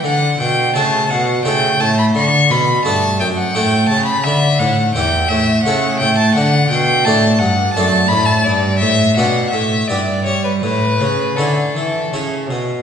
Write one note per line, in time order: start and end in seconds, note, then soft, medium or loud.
0.04 0.36 D3 soft
0.04 0.39 D3 medium
0.04 0.39 F#5 medium
0.40 0.74 B2 medium
0.40 0.72 B2 soft
0.40 0.75 G5 medium
0.75 1.07 C#3 soft
0.75 1.10 C#3 medium
0.75 1.01 A3 soft
0.75 1.26 F#4 soft
0.75 1.26 A4 soft
0.75 1.11 A5 medium
1.10 1.45 B2 medium
1.10 1.42 B2 soft
1.10 1.45 F#5 medium
1.45 1.77 C#3 soft
1.45 1.80 C#3 medium
1.45 2.12 A3 soft
1.45 2.12 E4 soft
1.45 2.12 A4 soft
1.45 1.82 G5 medium
1.80 2.12 A2 soft
1.80 2.15 A2 medium
1.80 1.98 A5 medium
1.99 2.05 B5 medium
2.15 2.47 D3 soft
2.15 2.52 D3 medium
2.15 2.52 C#6 medium
2.50 2.85 B2 medium
2.50 2.82 B2 soft
2.50 2.85 B5 medium
2.85 3.17 G2 soft
2.85 3.21 G2 medium
2.85 3.36 A3 soft
2.85 3.36 F#4 soft
2.85 3.36 A4 soft
2.85 3.19 A5 medium
3.20 3.54 F#2 soft
3.20 3.52 F#2 soft
3.20 3.27 G5 medium
3.37 3.56 F#5 medium
3.54 3.89 A2 medium
3.54 3.87 A2 soft
3.54 3.80 A3 soft
3.54 4.06 F#4 soft
3.54 4.06 A4 soft
3.54 3.88 G5 medium
3.89 4.23 C#3 medium
3.89 4.22 C#3 soft
3.89 4.05 A5 medium
4.06 4.25 B5 medium
4.24 4.61 D3 medium
4.24 4.57 D3 soft
4.24 4.61 E5 medium
4.59 4.94 A2 medium
4.59 4.92 A2 soft
4.59 4.94 F#5 medium
4.94 5.29 E2 medium
4.94 5.27 E2 soft
4.94 5.46 B3 soft
4.94 5.46 E4 soft
4.94 5.47 G4 soft
4.94 5.30 G5 medium
5.29 5.64 A2 medium
5.29 5.62 A2 soft
5.29 5.63 E5 medium
5.63 6.02 C#3 medium
5.63 5.98 C#3 medium
5.63 6.32 A3 soft
5.63 6.33 E4 soft
5.63 5.99 F#5 medium
5.68 6.33 A4 soft
6.00 6.35 A2 medium
6.00 6.33 A2 soft
6.00 6.18 G5 medium
6.18 6.34 A5 medium
6.35 6.70 D3 medium
6.35 6.68 D3 medium
6.35 6.70 F#5 medium
6.71 7.07 B2 medium
6.71 7.02 B2 soft
6.71 7.06 G5 medium
7.05 7.40 A2 medium
7.05 7.37 A2 soft
7.05 7.31 A3 soft
7.05 7.57 D4 soft
7.05 7.57 A4 soft
7.05 7.40 A5 medium
7.39 7.75 G2 medium
7.39 7.72 G2 medium
7.39 7.73 F#5 medium
7.74 8.09 F#2 medium
7.74 8.08 F#2 soft
7.74 8.43 A3 soft
7.74 8.43 D4 soft
7.74 8.43 A4 soft
7.74 8.10 A5 medium
8.08 8.45 A2 soft
8.08 8.43 A2 medium
8.08 8.27 B5 medium
8.26 8.45 A5 medium
8.44 8.83 G2 medium
8.44 8.78 G2 soft
8.44 8.78 D5 medium
8.79 9.18 A2 medium
8.79 9.14 A2 soft
8.79 9.15 E5 medium
9.17 9.52 B2 medium
9.17 9.50 B2 soft
9.17 9.44 B3 soft
9.17 9.44 D4 soft
9.17 9.70 G4 soft
9.17 9.50 F#5 medium
9.50 9.88 A2 soft
9.50 9.86 A2 soft
9.50 9.89 E5 medium
9.88 10.28 G2 soft
9.88 10.23 G2 soft
9.88 10.59 B3 soft
9.88 10.59 E4 soft
9.88 10.60 G4 soft
9.88 10.24 D5 medium
10.25 10.59 G3 soft
10.25 10.64 G3 medium
10.25 10.44 C#5 medium
10.44 10.52 B4 medium
10.62 11.01 A2 medium
10.62 10.97 A2 soft
10.62 11.38 B4 medium
11.00 11.37 C#3 medium
11.00 11.34 C#3 soft
11.36 11.74 D3 medium
11.36 11.72 D3 soft
11.36 11.92 C#4 soft
11.36 11.92 E4 soft
11.36 12.49 A4 medium
11.75 12.11 E3 soft
11.75 12.09 E3 soft
12.12 12.50 C#3 soft
12.12 12.46 C#3 soft
12.12 12.66 C#4 soft
12.12 12.67 E4 soft
12.49 12.82 B2 soft